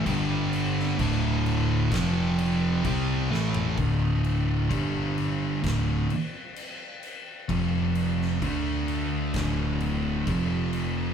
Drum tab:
CC |x-x-x-x-x-x-x---|x-x-x-x-x-x-x-x-|x-x-x-x-x-x-x-x-|
SD |---o----o-----o-|--------o-------|---o----o-------|
FT |---------------o|----------------|----------------|
BD |o---o---o---o---|o---o---o-------|o---o---o---o---|